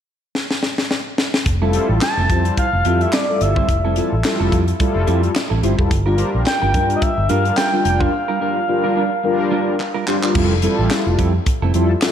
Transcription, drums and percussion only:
0.35 snare
0.51 snare
0.63 snare
0.78 snare
0.91 snare
1.18 snare
1.34 snare
1.46 kick, closed hi-hat
1.73 closed hi-hat
2.01 snare, clap, closed hi-hat
2.30 kick, closed hi-hat
2.45 closed hi-hat
2.57 kick, closed hi-hat
2.85 closed hi-hat
3.01 closed hi-hat
3.13 snare, clap, closed hi-hat
3.41 closed hi-hat
3.56 kick
3.69 kick, closed hi-hat
3.96 closed hi-hat
4.24 snare, clap, closed hi-hat
4.52 kick, closed hi-hat
4.68 closed hi-hat
4.80 kick, closed hi-hat
5.07 closed hi-hat
5.23 closed hi-hat
5.35 snare, clap, closed hi-hat
5.63 closed hi-hat
5.79 kick
5.91 kick, closed hi-hat
6.18 closed hi-hat
6.46 snare, clap, closed hi-hat
6.74 kick, closed hi-hat
6.90 closed hi-hat
7.02 kick, closed hi-hat
7.29 closed hi-hat
7.45 closed hi-hat
7.57 snare, clap, closed hi-hat
7.85 closed hi-hat
8.01 kick
9.80 clap
10.08 clap
10.23 clap
10.35 kick, crash
10.62 closed hi-hat
10.90 snare, clap, closed hi-hat
11.19 kick, closed hi-hat
11.46 kick, closed hi-hat
11.74 closed hi-hat
12.02 snare, clap, closed hi-hat

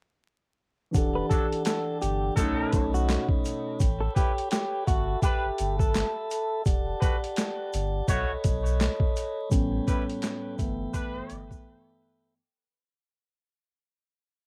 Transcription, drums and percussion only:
0.94 kick, closed hi-hat, shaker
1.31 kick, closed hi-hat, shaker
1.52 closed hi-hat
1.65 snare, clap, closed hi-hat, shaker
2.02 closed hi-hat, shaker
2.37 kick, closed hi-hat, shaker
2.73 kick, closed hi-hat, shaker
2.95 shaker
3.09 snare, clap, closed hi-hat, shaker
3.29 kick
3.45 closed hi-hat, shaker
3.80 kick, closed hi-hat, shaker
4.16 kick, closed hi-hat, shaker
4.38 closed hi-hat
4.51 snare, clap, closed hi-hat, shaker
4.88 kick, closed hi-hat, shaker
5.22 kick, closed hi-hat, shaker
5.58 closed hi-hat, shaker
5.79 kick, shaker
5.95 snare, clap, closed hi-hat, shaker
6.31 closed hi-hat, shaker
6.66 kick, closed hi-hat, shaker
7.02 kick, closed hi-hat, shaker
7.24 closed hi-hat
7.36 snare, clap, closed hi-hat, shaker
7.73 closed hi-hat, shaker
8.08 kick, closed hi-hat, shaker
8.44 kick, closed hi-hat, shaker
8.66 shaker
8.81 snare, clap, closed hi-hat, shaker
9.00 kick
9.16 closed hi-hat, shaker
9.51 kick, closed hi-hat, shaker
9.88 kick, closed hi-hat, shaker
10.10 closed hi-hat
10.22 snare, clap, closed hi-hat, shaker
10.59 kick, closed hi-hat, shaker
10.94 kick, closed hi-hat, shaker
11.30 closed hi-hat, shaker
11.51 kick, shaker

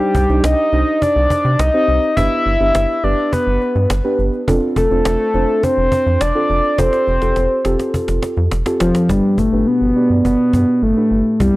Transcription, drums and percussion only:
0.15 cajon bass
0.29 cajon slap
0.44 cajon slap
0.73 cajon slap
0.87 cajon slap
1.02 cajon bass
1.30 cajon bass
1.45 cajon slap
1.59 cajon slap
1.88 cajon slap
2.03 cajon slap
2.17 cajon bass
2.46 cajon slap
2.60 cajon slap
2.75 cajon slap
3.03 cajon slap
3.18 cajon slap
3.33 cajon bass
3.61 cajon slap
3.75 cajon slap
3.90 cajon slap
4.19 cajon slap
4.33 cajon slap
4.48 cajon bass
4.76 cajon bass
4.91 cajon slap
5.05 cajon slap
5.34 cajon slap
5.49 cajon slap
5.63 cajon bass
5.92 cajon bass
6.21 cajon slap
6.50 cajon slap
6.64 cajon slap
6.78 cajon bass, cajon slap
6.93 cajon slap
7.07 cajon slap
7.22 cajon slap
7.36 cajon slap
7.65 cajon slap
7.79 cajon slap
7.94 cajon bass
8.08 cajon slap
8.22 cajon slap
8.37 cajon slap
8.51 cajon slap
8.66 cajon slap
8.80 cajon slap
8.95 cajon slap
9.09 cajon bass
9.38 cajon bass
10.25 cajon bass
10.53 cajon bass
11.40 cajon bass

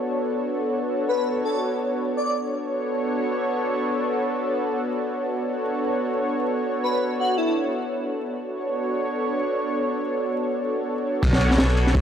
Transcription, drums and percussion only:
11.23 kick, crash, ride
11.33 snare
11.41 ride
11.51 snare
11.58 snare, ride
11.77 ride
11.87 snare
11.95 kick, ride

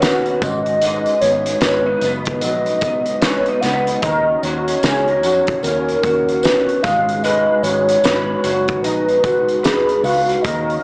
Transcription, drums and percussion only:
0.02 snare, closed hi-hat, tambourine
0.26 closed hi-hat
0.42 kick, closed hi-hat, tambourine
0.66 closed hi-hat
0.82 closed hi-hat, tambourine
1.06 closed hi-hat
1.22 closed hi-hat, tambourine
1.46 closed hi-hat
1.61 snare, closed hi-hat, tambourine
2.01 closed hi-hat, tambourine
2.25 kick, closed hi-hat
2.41 closed hi-hat
2.66 closed hi-hat
2.81 kick, closed hi-hat, tambourine
3.06 closed hi-hat
3.22 snare, closed hi-hat, tambourine
3.46 closed hi-hat
3.62 snare, closed hi-hat, tambourine
3.87 closed hi-hat
4.02 kick, closed hi-hat, tambourine
4.43 closed hi-hat, tambourine
4.68 closed hi-hat
4.83 snare, closed hi-hat, tambourine
5.08 closed hi-hat
5.23 closed hi-hat, tambourine
5.47 kick, closed hi-hat
5.63 closed hi-hat, tambourine
5.89 closed hi-hat
6.03 kick, closed hi-hat, tambourine
6.29 closed hi-hat
6.43 snare, closed hi-hat, tambourine
6.69 closed hi-hat
6.84 kick, snare, closed hi-hat, tambourine
7.09 closed hi-hat
7.24 closed hi-hat, tambourine
7.63 closed hi-hat, tambourine
7.89 closed hi-hat
8.04 snare, closed hi-hat, tambourine
8.44 closed hi-hat, tambourine
8.68 kick, closed hi-hat
8.84 closed hi-hat, tambourine
9.09 closed hi-hat
9.24 kick, closed hi-hat, tambourine
9.49 closed hi-hat
9.64 snare, closed hi-hat, tambourine
9.89 closed hi-hat
10.04 open hi-hat, tambourine
10.29 closed hi-hat
10.44 kick, closed hi-hat, tambourine
10.70 closed hi-hat

